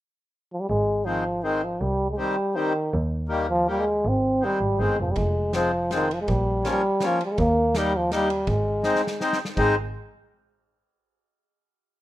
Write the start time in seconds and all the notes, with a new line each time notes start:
0.53 F3
0.60 G3
0.69 G#1 G#3
1.06 D#3 F3 G#3 C4
1.43 D#3 G#3 C4
1.64 F3
1.81 C2 G3
2.11 G#3
2.17 D#3 G3 C4
2.55 D#3 G3 C4
2.93 D#2
3.29 D#3 G3 A#3
3.50 F3
3.67 D#3 G3 A#3
3.80 G#3
4.05 G#1 C4
4.41 D#3 G3 G#3 C4
4.61 G#1
4.79 G1 D#3 G#3 C4
5.00 F1 F3
5.11 G3
5.16 F1 G#3, kick, ride
5.53 F3 G#3 C4, snare, ride
5.90 F3 G#3 C4, snare, ride
5.95 D#3
6.11 F3, ride
6.21 G#3
6.28 A#1 G3, kick, ride
6.64 F3 A#3 C#4, snare, ride
6.70 G3
7.00 F3 A#3 C#4, snare, ride
7.07 F3
7.21 ride
7.25 G3
7.32 G#3
7.38 D#2 A#3, kick, ride
7.75 G3 A#3 D#4, snare, ride
7.97 F3
8.11 G3 A#3 D#4, snare, ride
8.30 ride
8.47 G#1 G#3, kick, ride
8.83 G#3 C4 D#4, snare
8.96 snare
9.07 snare
9.20 G#3 C4 D#4, snare
9.33 snare
9.45 snare
9.57 G#1 G#3 C4 D#4, kick, crash